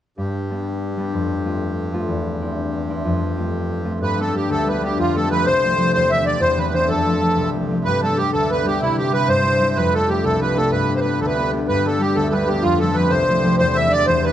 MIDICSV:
0, 0, Header, 1, 4, 480
1, 0, Start_track
1, 0, Tempo, 319659
1, 260, Time_signature, 6, 3, 24, 8
1, 21509, End_track
2, 0, Start_track
2, 0, Title_t, "Accordion"
2, 0, Program_c, 0, 21
2, 6045, Note_on_c, 0, 71, 77
2, 6303, Note_off_c, 0, 71, 0
2, 6315, Note_on_c, 0, 69, 72
2, 6533, Note_off_c, 0, 69, 0
2, 6546, Note_on_c, 0, 67, 68
2, 6763, Note_off_c, 0, 67, 0
2, 6775, Note_on_c, 0, 69, 82
2, 7023, Note_on_c, 0, 71, 68
2, 7027, Note_off_c, 0, 69, 0
2, 7247, Note_off_c, 0, 71, 0
2, 7271, Note_on_c, 0, 67, 68
2, 7485, Note_off_c, 0, 67, 0
2, 7487, Note_on_c, 0, 65, 74
2, 7743, Note_off_c, 0, 65, 0
2, 7743, Note_on_c, 0, 69, 74
2, 7945, Note_off_c, 0, 69, 0
2, 7967, Note_on_c, 0, 71, 91
2, 8193, Note_off_c, 0, 71, 0
2, 8200, Note_on_c, 0, 72, 100
2, 8884, Note_off_c, 0, 72, 0
2, 8907, Note_on_c, 0, 72, 98
2, 9171, Note_on_c, 0, 76, 90
2, 9173, Note_off_c, 0, 72, 0
2, 9378, Note_off_c, 0, 76, 0
2, 9390, Note_on_c, 0, 74, 82
2, 9623, Note_on_c, 0, 72, 94
2, 9625, Note_off_c, 0, 74, 0
2, 9876, Note_on_c, 0, 71, 77
2, 9891, Note_off_c, 0, 72, 0
2, 10114, Note_off_c, 0, 71, 0
2, 10116, Note_on_c, 0, 72, 88
2, 10339, Note_on_c, 0, 69, 82
2, 10348, Note_off_c, 0, 72, 0
2, 11261, Note_off_c, 0, 69, 0
2, 11777, Note_on_c, 0, 71, 85
2, 12022, Note_off_c, 0, 71, 0
2, 12046, Note_on_c, 0, 69, 78
2, 12263, Note_on_c, 0, 67, 85
2, 12279, Note_off_c, 0, 69, 0
2, 12478, Note_off_c, 0, 67, 0
2, 12504, Note_on_c, 0, 69, 79
2, 12771, Note_off_c, 0, 69, 0
2, 12777, Note_on_c, 0, 71, 77
2, 13002, Note_on_c, 0, 67, 82
2, 13004, Note_off_c, 0, 71, 0
2, 13222, Note_on_c, 0, 64, 78
2, 13231, Note_off_c, 0, 67, 0
2, 13464, Note_off_c, 0, 64, 0
2, 13488, Note_on_c, 0, 67, 82
2, 13697, Note_off_c, 0, 67, 0
2, 13714, Note_on_c, 0, 71, 90
2, 13947, Note_off_c, 0, 71, 0
2, 13948, Note_on_c, 0, 72, 100
2, 14656, Note_on_c, 0, 71, 87
2, 14685, Note_off_c, 0, 72, 0
2, 14927, Note_on_c, 0, 69, 84
2, 14928, Note_off_c, 0, 71, 0
2, 15154, Note_on_c, 0, 67, 78
2, 15160, Note_off_c, 0, 69, 0
2, 15369, Note_on_c, 0, 69, 80
2, 15387, Note_off_c, 0, 67, 0
2, 15618, Note_off_c, 0, 69, 0
2, 15638, Note_on_c, 0, 71, 85
2, 15865, Note_on_c, 0, 69, 81
2, 15876, Note_off_c, 0, 71, 0
2, 16080, Note_off_c, 0, 69, 0
2, 16093, Note_on_c, 0, 71, 79
2, 16426, Note_off_c, 0, 71, 0
2, 16454, Note_on_c, 0, 72, 56
2, 16514, Note_off_c, 0, 72, 0
2, 16517, Note_on_c, 0, 71, 73
2, 16816, Note_off_c, 0, 71, 0
2, 16841, Note_on_c, 0, 69, 60
2, 16909, Note_off_c, 0, 69, 0
2, 16912, Note_on_c, 0, 71, 78
2, 17286, Note_off_c, 0, 71, 0
2, 17544, Note_on_c, 0, 71, 89
2, 17809, Note_on_c, 0, 69, 68
2, 17813, Note_off_c, 0, 71, 0
2, 18025, Note_on_c, 0, 67, 85
2, 18041, Note_off_c, 0, 69, 0
2, 18251, Note_on_c, 0, 69, 78
2, 18264, Note_off_c, 0, 67, 0
2, 18434, Note_off_c, 0, 69, 0
2, 18457, Note_on_c, 0, 69, 53
2, 18509, Note_on_c, 0, 71, 73
2, 18523, Note_off_c, 0, 69, 0
2, 18729, Note_on_c, 0, 67, 77
2, 18752, Note_off_c, 0, 71, 0
2, 18944, Note_on_c, 0, 65, 91
2, 18976, Note_off_c, 0, 67, 0
2, 19205, Note_off_c, 0, 65, 0
2, 19209, Note_on_c, 0, 69, 77
2, 19435, Note_on_c, 0, 71, 89
2, 19462, Note_off_c, 0, 69, 0
2, 19670, Note_on_c, 0, 72, 84
2, 19689, Note_off_c, 0, 71, 0
2, 20353, Note_off_c, 0, 72, 0
2, 20392, Note_on_c, 0, 72, 104
2, 20647, Note_on_c, 0, 76, 96
2, 20677, Note_off_c, 0, 72, 0
2, 20893, Note_on_c, 0, 74, 99
2, 20901, Note_off_c, 0, 76, 0
2, 21114, Note_off_c, 0, 74, 0
2, 21119, Note_on_c, 0, 72, 96
2, 21385, Note_on_c, 0, 71, 79
2, 21401, Note_off_c, 0, 72, 0
2, 21509, Note_off_c, 0, 71, 0
2, 21509, End_track
3, 0, Start_track
3, 0, Title_t, "Harp"
3, 0, Program_c, 1, 46
3, 265, Note_on_c, 1, 43, 54
3, 744, Note_on_c, 1, 55, 31
3, 751, Note_on_c, 1, 59, 34
3, 758, Note_on_c, 1, 62, 38
3, 1442, Note_off_c, 1, 55, 0
3, 1455, Note_on_c, 1, 55, 47
3, 1464, Note_off_c, 1, 59, 0
3, 1470, Note_on_c, 1, 59, 41
3, 1471, Note_off_c, 1, 62, 0
3, 1477, Note_on_c, 1, 62, 45
3, 1702, Note_on_c, 1, 41, 51
3, 1775, Note_off_c, 1, 43, 0
3, 1775, Note_off_c, 1, 55, 0
3, 2179, Note_on_c, 1, 57, 33
3, 2181, Note_on_c, 1, 60, 35
3, 2195, Note_on_c, 1, 65, 37
3, 2271, Note_off_c, 1, 59, 0
3, 2889, Note_off_c, 1, 57, 0
3, 2895, Note_on_c, 1, 57, 51
3, 2896, Note_off_c, 1, 60, 0
3, 2902, Note_on_c, 1, 60, 46
3, 2906, Note_off_c, 1, 65, 0
3, 2912, Note_on_c, 1, 65, 59
3, 3123, Note_on_c, 1, 40, 51
3, 3213, Note_off_c, 1, 65, 0
3, 3216, Note_off_c, 1, 41, 0
3, 3612, Note_off_c, 1, 60, 0
3, 3618, Note_on_c, 1, 60, 42
3, 3626, Note_off_c, 1, 62, 0
3, 3632, Note_on_c, 1, 62, 33
3, 3632, Note_on_c, 1, 64, 38
3, 4338, Note_off_c, 1, 60, 0
3, 4344, Note_on_c, 1, 60, 49
3, 4347, Note_off_c, 1, 62, 0
3, 4353, Note_on_c, 1, 62, 44
3, 4354, Note_off_c, 1, 64, 0
3, 4360, Note_on_c, 1, 64, 51
3, 4569, Note_on_c, 1, 41, 56
3, 4655, Note_off_c, 1, 40, 0
3, 4659, Note_off_c, 1, 64, 0
3, 5058, Note_off_c, 1, 57, 0
3, 5062, Note_off_c, 1, 60, 0
3, 5064, Note_on_c, 1, 57, 36
3, 5069, Note_on_c, 1, 60, 37
3, 5082, Note_on_c, 1, 65, 41
3, 5764, Note_off_c, 1, 57, 0
3, 5770, Note_on_c, 1, 57, 47
3, 5776, Note_off_c, 1, 60, 0
3, 5779, Note_off_c, 1, 65, 0
3, 5782, Note_on_c, 1, 60, 42
3, 5785, Note_on_c, 1, 65, 49
3, 6016, Note_on_c, 1, 43, 55
3, 6095, Note_off_c, 1, 41, 0
3, 6274, Note_on_c, 1, 55, 40
3, 6278, Note_on_c, 1, 59, 39
3, 6284, Note_off_c, 1, 62, 0
3, 6290, Note_on_c, 1, 62, 43
3, 6369, Note_off_c, 1, 60, 0
3, 6485, Note_off_c, 1, 55, 0
3, 6499, Note_off_c, 1, 59, 0
3, 6503, Note_on_c, 1, 55, 41
3, 6505, Note_on_c, 1, 59, 37
3, 6513, Note_off_c, 1, 62, 0
3, 6519, Note_on_c, 1, 62, 46
3, 6749, Note_on_c, 1, 38, 61
3, 6814, Note_off_c, 1, 43, 0
3, 6983, Note_off_c, 1, 55, 0
3, 6997, Note_on_c, 1, 55, 47
3, 7003, Note_off_c, 1, 62, 0
3, 7004, Note_off_c, 1, 59, 0
3, 7009, Note_on_c, 1, 62, 46
3, 7010, Note_on_c, 1, 59, 40
3, 7206, Note_off_c, 1, 55, 0
3, 7221, Note_on_c, 1, 55, 44
3, 7222, Note_off_c, 1, 59, 0
3, 7228, Note_on_c, 1, 59, 44
3, 7231, Note_off_c, 1, 62, 0
3, 7237, Note_on_c, 1, 62, 56
3, 7460, Note_on_c, 1, 41, 51
3, 7534, Note_off_c, 1, 38, 0
3, 7534, Note_off_c, 1, 55, 0
3, 7721, Note_on_c, 1, 53, 37
3, 7729, Note_off_c, 1, 57, 0
3, 7735, Note_on_c, 1, 57, 42
3, 7740, Note_on_c, 1, 60, 52
3, 7830, Note_off_c, 1, 59, 0
3, 7938, Note_off_c, 1, 53, 0
3, 7956, Note_off_c, 1, 57, 0
3, 7956, Note_on_c, 1, 53, 43
3, 7962, Note_on_c, 1, 57, 38
3, 7966, Note_off_c, 1, 60, 0
3, 7972, Note_on_c, 1, 60, 41
3, 8186, Note_on_c, 1, 36, 65
3, 8253, Note_off_c, 1, 41, 0
3, 8442, Note_off_c, 1, 53, 0
3, 8456, Note_on_c, 1, 53, 44
3, 8457, Note_off_c, 1, 57, 0
3, 8463, Note_off_c, 1, 60, 0
3, 8463, Note_on_c, 1, 57, 41
3, 8469, Note_on_c, 1, 60, 50
3, 8654, Note_off_c, 1, 53, 0
3, 8672, Note_on_c, 1, 53, 47
3, 8675, Note_off_c, 1, 57, 0
3, 8681, Note_on_c, 1, 57, 45
3, 8686, Note_off_c, 1, 60, 0
3, 8692, Note_on_c, 1, 60, 61
3, 8917, Note_on_c, 1, 40, 52
3, 8973, Note_off_c, 1, 36, 0
3, 8973, Note_off_c, 1, 53, 0
3, 9007, Note_off_c, 1, 65, 0
3, 9161, Note_on_c, 1, 52, 38
3, 9164, Note_off_c, 1, 60, 0
3, 9170, Note_on_c, 1, 60, 35
3, 9172, Note_off_c, 1, 62, 0
3, 9178, Note_on_c, 1, 62, 48
3, 9375, Note_off_c, 1, 52, 0
3, 9389, Note_on_c, 1, 52, 41
3, 9390, Note_off_c, 1, 60, 0
3, 9395, Note_off_c, 1, 62, 0
3, 9396, Note_on_c, 1, 60, 38
3, 9401, Note_on_c, 1, 62, 47
3, 9597, Note_off_c, 1, 40, 0
3, 9615, Note_on_c, 1, 40, 64
3, 9855, Note_off_c, 1, 52, 0
3, 9870, Note_on_c, 1, 52, 39
3, 9875, Note_off_c, 1, 60, 0
3, 9878, Note_off_c, 1, 62, 0
3, 9881, Note_on_c, 1, 60, 38
3, 9884, Note_on_c, 1, 62, 49
3, 10093, Note_off_c, 1, 52, 0
3, 10109, Note_on_c, 1, 52, 47
3, 10112, Note_off_c, 1, 60, 0
3, 10114, Note_off_c, 1, 62, 0
3, 10118, Note_on_c, 1, 60, 48
3, 10120, Note_on_c, 1, 62, 55
3, 10338, Note_on_c, 1, 41, 51
3, 10412, Note_off_c, 1, 40, 0
3, 10412, Note_off_c, 1, 52, 0
3, 10597, Note_on_c, 1, 53, 40
3, 10600, Note_off_c, 1, 57, 0
3, 10606, Note_on_c, 1, 57, 37
3, 10608, Note_off_c, 1, 60, 0
3, 10614, Note_on_c, 1, 60, 49
3, 10806, Note_off_c, 1, 53, 0
3, 10822, Note_off_c, 1, 57, 0
3, 10824, Note_on_c, 1, 53, 41
3, 10828, Note_on_c, 1, 57, 39
3, 10831, Note_off_c, 1, 60, 0
3, 10837, Note_on_c, 1, 60, 44
3, 11055, Note_on_c, 1, 36, 65
3, 11132, Note_off_c, 1, 41, 0
3, 11298, Note_off_c, 1, 53, 0
3, 11311, Note_on_c, 1, 53, 40
3, 11321, Note_off_c, 1, 60, 0
3, 11322, Note_off_c, 1, 57, 0
3, 11327, Note_on_c, 1, 60, 43
3, 11328, Note_on_c, 1, 57, 38
3, 11523, Note_off_c, 1, 53, 0
3, 11529, Note_on_c, 1, 53, 48
3, 11548, Note_off_c, 1, 57, 0
3, 11554, Note_on_c, 1, 57, 43
3, 11570, Note_off_c, 1, 60, 0
3, 11576, Note_on_c, 1, 60, 52
3, 11785, Note_on_c, 1, 43, 52
3, 11852, Note_off_c, 1, 36, 0
3, 11852, Note_off_c, 1, 53, 0
3, 12043, Note_on_c, 1, 55, 45
3, 12051, Note_off_c, 1, 62, 0
3, 12056, Note_on_c, 1, 59, 36
3, 12057, Note_on_c, 1, 62, 49
3, 12146, Note_off_c, 1, 60, 0
3, 12262, Note_off_c, 1, 55, 0
3, 12277, Note_on_c, 1, 55, 41
3, 12282, Note_off_c, 1, 59, 0
3, 12285, Note_off_c, 1, 62, 0
3, 12288, Note_on_c, 1, 59, 36
3, 12291, Note_on_c, 1, 62, 44
3, 12516, Note_on_c, 1, 38, 63
3, 12572, Note_off_c, 1, 43, 0
3, 12738, Note_off_c, 1, 55, 0
3, 12756, Note_on_c, 1, 55, 43
3, 12758, Note_off_c, 1, 59, 0
3, 12764, Note_on_c, 1, 59, 37
3, 12772, Note_off_c, 1, 62, 0
3, 12778, Note_on_c, 1, 62, 48
3, 12979, Note_off_c, 1, 55, 0
3, 12993, Note_on_c, 1, 55, 51
3, 12998, Note_off_c, 1, 59, 0
3, 13001, Note_off_c, 1, 62, 0
3, 13004, Note_on_c, 1, 59, 48
3, 13007, Note_on_c, 1, 62, 53
3, 13229, Note_on_c, 1, 48, 51
3, 13293, Note_off_c, 1, 38, 0
3, 13293, Note_off_c, 1, 55, 0
3, 13319, Note_off_c, 1, 59, 0
3, 13475, Note_on_c, 1, 55, 44
3, 13482, Note_on_c, 1, 60, 41
3, 13493, Note_on_c, 1, 64, 48
3, 13693, Note_off_c, 1, 55, 0
3, 13710, Note_off_c, 1, 60, 0
3, 13711, Note_on_c, 1, 55, 43
3, 13716, Note_off_c, 1, 64, 0
3, 13716, Note_on_c, 1, 60, 33
3, 13722, Note_on_c, 1, 64, 48
3, 13931, Note_on_c, 1, 43, 72
3, 14013, Note_off_c, 1, 48, 0
3, 14179, Note_off_c, 1, 55, 0
3, 14194, Note_on_c, 1, 55, 40
3, 14196, Note_off_c, 1, 60, 0
3, 14202, Note_off_c, 1, 64, 0
3, 14202, Note_on_c, 1, 60, 42
3, 14208, Note_on_c, 1, 64, 44
3, 14411, Note_off_c, 1, 55, 0
3, 14429, Note_on_c, 1, 55, 52
3, 14431, Note_off_c, 1, 60, 0
3, 14437, Note_on_c, 1, 60, 47
3, 14441, Note_off_c, 1, 64, 0
3, 14447, Note_on_c, 1, 64, 59
3, 14667, Note_on_c, 1, 41, 49
3, 14733, Note_off_c, 1, 43, 0
3, 14733, Note_off_c, 1, 55, 0
3, 14757, Note_off_c, 1, 64, 0
3, 14914, Note_off_c, 1, 57, 0
3, 14916, Note_off_c, 1, 62, 0
3, 14920, Note_on_c, 1, 57, 40
3, 14922, Note_on_c, 1, 62, 43
3, 14934, Note_on_c, 1, 65, 42
3, 15107, Note_off_c, 1, 57, 0
3, 15113, Note_on_c, 1, 57, 46
3, 15146, Note_off_c, 1, 62, 0
3, 15152, Note_on_c, 1, 62, 36
3, 15192, Note_off_c, 1, 65, 0
3, 15198, Note_on_c, 1, 65, 48
3, 15376, Note_on_c, 1, 36, 68
3, 15454, Note_off_c, 1, 41, 0
3, 15617, Note_off_c, 1, 57, 0
3, 15623, Note_on_c, 1, 57, 42
3, 15627, Note_off_c, 1, 62, 0
3, 15630, Note_off_c, 1, 65, 0
3, 15633, Note_on_c, 1, 62, 42
3, 15636, Note_on_c, 1, 65, 49
3, 15851, Note_off_c, 1, 57, 0
3, 15857, Note_on_c, 1, 57, 55
3, 15863, Note_off_c, 1, 62, 0
3, 15865, Note_off_c, 1, 65, 0
3, 15869, Note_on_c, 1, 62, 48
3, 15871, Note_on_c, 1, 65, 58
3, 16096, Note_on_c, 1, 43, 55
3, 16174, Note_off_c, 1, 36, 0
3, 16364, Note_on_c, 1, 59, 36
3, 16369, Note_off_c, 1, 62, 0
3, 16375, Note_on_c, 1, 62, 36
3, 16376, Note_on_c, 1, 67, 45
3, 16454, Note_off_c, 1, 60, 0
3, 16581, Note_off_c, 1, 59, 0
3, 16587, Note_on_c, 1, 59, 39
3, 16589, Note_off_c, 1, 62, 0
3, 16595, Note_on_c, 1, 62, 35
3, 16596, Note_off_c, 1, 67, 0
3, 16602, Note_on_c, 1, 67, 48
3, 16835, Note_on_c, 1, 38, 62
3, 16895, Note_off_c, 1, 43, 0
3, 17052, Note_off_c, 1, 59, 0
3, 17058, Note_on_c, 1, 59, 46
3, 17082, Note_off_c, 1, 62, 0
3, 17088, Note_on_c, 1, 62, 38
3, 17109, Note_off_c, 1, 67, 0
3, 17115, Note_on_c, 1, 67, 46
3, 17300, Note_off_c, 1, 59, 0
3, 17306, Note_off_c, 1, 62, 0
3, 17306, Note_on_c, 1, 59, 48
3, 17312, Note_on_c, 1, 62, 42
3, 17315, Note_off_c, 1, 67, 0
3, 17321, Note_on_c, 1, 67, 57
3, 17539, Note_on_c, 1, 43, 55
3, 17615, Note_off_c, 1, 38, 0
3, 17786, Note_on_c, 1, 55, 41
3, 17788, Note_off_c, 1, 59, 0
3, 17794, Note_on_c, 1, 59, 38
3, 17802, Note_off_c, 1, 62, 0
3, 17808, Note_on_c, 1, 62, 50
3, 18010, Note_off_c, 1, 55, 0
3, 18028, Note_on_c, 1, 55, 41
3, 18034, Note_off_c, 1, 59, 0
3, 18040, Note_off_c, 1, 62, 0
3, 18040, Note_on_c, 1, 59, 35
3, 18046, Note_on_c, 1, 62, 47
3, 18261, Note_on_c, 1, 38, 60
3, 18335, Note_off_c, 1, 43, 0
3, 18488, Note_off_c, 1, 55, 0
3, 18506, Note_on_c, 1, 55, 44
3, 18509, Note_off_c, 1, 59, 0
3, 18515, Note_off_c, 1, 62, 0
3, 18515, Note_on_c, 1, 59, 36
3, 18522, Note_on_c, 1, 62, 48
3, 18721, Note_off_c, 1, 55, 0
3, 18736, Note_on_c, 1, 55, 50
3, 18741, Note_off_c, 1, 59, 0
3, 18743, Note_off_c, 1, 62, 0
3, 18747, Note_on_c, 1, 59, 53
3, 18749, Note_on_c, 1, 62, 51
3, 18970, Note_on_c, 1, 41, 61
3, 19055, Note_off_c, 1, 38, 0
3, 19055, Note_off_c, 1, 55, 0
3, 19225, Note_on_c, 1, 53, 42
3, 19231, Note_off_c, 1, 57, 0
3, 19237, Note_on_c, 1, 57, 37
3, 19238, Note_on_c, 1, 60, 48
3, 19328, Note_off_c, 1, 59, 0
3, 19431, Note_off_c, 1, 53, 0
3, 19445, Note_on_c, 1, 53, 43
3, 19449, Note_off_c, 1, 57, 0
3, 19453, Note_off_c, 1, 60, 0
3, 19455, Note_on_c, 1, 57, 33
3, 19459, Note_on_c, 1, 60, 47
3, 19659, Note_off_c, 1, 65, 0
3, 19684, Note_on_c, 1, 36, 69
3, 19775, Note_off_c, 1, 41, 0
3, 19923, Note_off_c, 1, 53, 0
3, 19941, Note_on_c, 1, 53, 46
3, 19949, Note_off_c, 1, 57, 0
3, 19955, Note_on_c, 1, 57, 44
3, 19958, Note_off_c, 1, 60, 0
3, 19964, Note_on_c, 1, 60, 48
3, 20155, Note_off_c, 1, 53, 0
3, 20169, Note_on_c, 1, 53, 52
3, 20175, Note_off_c, 1, 57, 0
3, 20181, Note_on_c, 1, 57, 48
3, 20185, Note_off_c, 1, 60, 0
3, 20191, Note_on_c, 1, 60, 63
3, 20415, Note_on_c, 1, 40, 67
3, 20495, Note_off_c, 1, 36, 0
3, 20495, Note_off_c, 1, 53, 0
3, 20680, Note_off_c, 1, 60, 0
3, 20681, Note_on_c, 1, 52, 37
3, 20686, Note_on_c, 1, 60, 40
3, 20690, Note_off_c, 1, 62, 0
3, 20696, Note_on_c, 1, 62, 47
3, 20855, Note_off_c, 1, 67, 0
3, 20897, Note_off_c, 1, 52, 0
3, 20912, Note_on_c, 1, 52, 44
3, 20917, Note_off_c, 1, 60, 0
3, 20919, Note_off_c, 1, 62, 0
3, 20923, Note_on_c, 1, 60, 34
3, 20925, Note_on_c, 1, 62, 52
3, 21129, Note_off_c, 1, 40, 0
3, 21147, Note_on_c, 1, 40, 71
3, 21391, Note_off_c, 1, 52, 0
3, 21409, Note_on_c, 1, 52, 45
3, 21411, Note_off_c, 1, 60, 0
3, 21417, Note_on_c, 1, 60, 39
3, 21422, Note_off_c, 1, 62, 0
3, 21428, Note_on_c, 1, 62, 50
3, 21509, Note_off_c, 1, 40, 0
3, 21509, Note_off_c, 1, 52, 0
3, 21509, Note_off_c, 1, 57, 0
3, 21509, Note_off_c, 1, 60, 0
3, 21509, Note_off_c, 1, 62, 0
3, 21509, End_track
4, 0, Start_track
4, 0, Title_t, "Accordion"
4, 0, Program_c, 2, 21
4, 267, Note_on_c, 2, 43, 62
4, 5990, Note_off_c, 2, 43, 0
4, 6013, Note_on_c, 2, 43, 56
4, 11774, Note_off_c, 2, 43, 0
4, 11797, Note_on_c, 2, 43, 61
4, 17526, Note_off_c, 2, 43, 0
4, 17549, Note_on_c, 2, 43, 62
4, 21509, Note_off_c, 2, 43, 0
4, 21509, End_track
0, 0, End_of_file